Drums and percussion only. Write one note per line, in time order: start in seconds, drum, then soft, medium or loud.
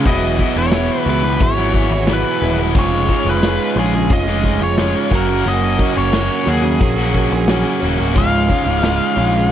0.06 kick loud
0.06 open hi-hat medium
0.39 kick medium
0.39 open hi-hat medium
0.72 snare loud
0.72 open hi-hat medium
1.06 open hi-hat medium
1.24 snare soft
1.40 kick loud
1.40 open hi-hat medium
1.74 kick medium
1.74 open hi-hat medium
2.07 snare loud
2.07 open hi-hat medium
2.41 open hi-hat medium
2.75 kick loud
2.75 crash loud
3.09 kick medium
3.09 open hi-hat medium
3.43 snare loud
3.43 open hi-hat medium
3.77 open hi-hat medium
3.94 snare soft
4.10 kick loud
4.10 open hi-hat medium
4.43 kick medium
4.43 open hi-hat medium
4.78 snare loud
4.78 open hi-hat medium
5.11 kick medium
5.11 open hi-hat medium
5.46 open hi-hat medium
5.79 kick medium
5.79 open hi-hat medium
6.13 snare loud
6.13 open hi-hat medium
6.47 open hi-hat medium
6.64 snare soft
6.81 kick loud
6.81 open hi-hat medium
7.14 kick medium
7.14 open hi-hat medium
7.48 snare loud
7.48 open hi-hat medium
7.83 open hi-hat medium
8.16 kick loud
8.16 crash medium
8.50 kick medium
8.50 open hi-hat medium
8.83 snare loud
8.83 open hi-hat medium
9.18 open hi-hat medium
9.35 snare soft